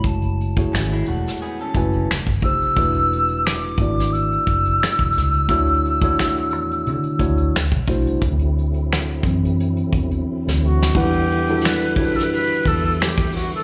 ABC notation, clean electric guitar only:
X:1
M:4/4
L:1/16
Q:"Swing 16ths" 1/4=88
K:Dlyd
V:1 name="Clean electric guitar"
z4 [E,C] [G,E] [A,F]2 [B,G] [CA]3 z4 | z16 | z16 | z16 |
z16 |]